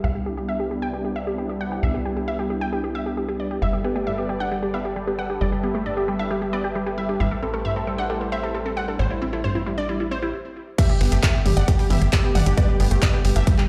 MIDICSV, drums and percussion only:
0, 0, Header, 1, 2, 480
1, 0, Start_track
1, 0, Key_signature, 1, "major"
1, 0, Tempo, 447761
1, 41, Time_signature, 4, 2, 24, 8
1, 14671, End_track
2, 0, Start_track
2, 0, Title_t, "Drums"
2, 11561, Note_on_c, 9, 36, 122
2, 11561, Note_on_c, 9, 42, 80
2, 11561, Note_on_c, 9, 49, 102
2, 11668, Note_off_c, 9, 36, 0
2, 11668, Note_off_c, 9, 42, 0
2, 11668, Note_off_c, 9, 49, 0
2, 11800, Note_on_c, 9, 46, 104
2, 11908, Note_off_c, 9, 46, 0
2, 11921, Note_on_c, 9, 42, 56
2, 12028, Note_off_c, 9, 42, 0
2, 12040, Note_on_c, 9, 36, 120
2, 12041, Note_on_c, 9, 39, 127
2, 12041, Note_on_c, 9, 42, 86
2, 12148, Note_off_c, 9, 36, 0
2, 12148, Note_off_c, 9, 39, 0
2, 12148, Note_off_c, 9, 42, 0
2, 12281, Note_on_c, 9, 46, 111
2, 12281, Note_on_c, 9, 47, 59
2, 12388, Note_off_c, 9, 46, 0
2, 12388, Note_off_c, 9, 47, 0
2, 12401, Note_on_c, 9, 42, 55
2, 12508, Note_off_c, 9, 42, 0
2, 12521, Note_on_c, 9, 36, 115
2, 12521, Note_on_c, 9, 42, 84
2, 12628, Note_off_c, 9, 36, 0
2, 12628, Note_off_c, 9, 42, 0
2, 12641, Note_on_c, 9, 46, 62
2, 12748, Note_off_c, 9, 46, 0
2, 12761, Note_on_c, 9, 46, 105
2, 12761, Note_on_c, 9, 47, 75
2, 12868, Note_off_c, 9, 46, 0
2, 12868, Note_off_c, 9, 47, 0
2, 12881, Note_on_c, 9, 42, 55
2, 12988, Note_off_c, 9, 42, 0
2, 13001, Note_on_c, 9, 36, 117
2, 13001, Note_on_c, 9, 39, 118
2, 13001, Note_on_c, 9, 42, 82
2, 13108, Note_off_c, 9, 36, 0
2, 13108, Note_off_c, 9, 39, 0
2, 13108, Note_off_c, 9, 42, 0
2, 13241, Note_on_c, 9, 46, 107
2, 13241, Note_on_c, 9, 47, 74
2, 13348, Note_off_c, 9, 46, 0
2, 13348, Note_off_c, 9, 47, 0
2, 13361, Note_on_c, 9, 42, 58
2, 13468, Note_off_c, 9, 42, 0
2, 13481, Note_on_c, 9, 36, 127
2, 13481, Note_on_c, 9, 42, 81
2, 13588, Note_off_c, 9, 36, 0
2, 13588, Note_off_c, 9, 42, 0
2, 13721, Note_on_c, 9, 46, 109
2, 13828, Note_off_c, 9, 46, 0
2, 13841, Note_on_c, 9, 42, 53
2, 13948, Note_off_c, 9, 42, 0
2, 13960, Note_on_c, 9, 36, 122
2, 13960, Note_on_c, 9, 39, 126
2, 13960, Note_on_c, 9, 42, 84
2, 14068, Note_off_c, 9, 36, 0
2, 14068, Note_off_c, 9, 39, 0
2, 14068, Note_off_c, 9, 42, 0
2, 14200, Note_on_c, 9, 46, 116
2, 14308, Note_off_c, 9, 46, 0
2, 14320, Note_on_c, 9, 42, 54
2, 14428, Note_off_c, 9, 42, 0
2, 14440, Note_on_c, 9, 36, 124
2, 14440, Note_on_c, 9, 42, 81
2, 14548, Note_off_c, 9, 36, 0
2, 14548, Note_off_c, 9, 42, 0
2, 14561, Note_on_c, 9, 39, 39
2, 14668, Note_off_c, 9, 39, 0
2, 14671, End_track
0, 0, End_of_file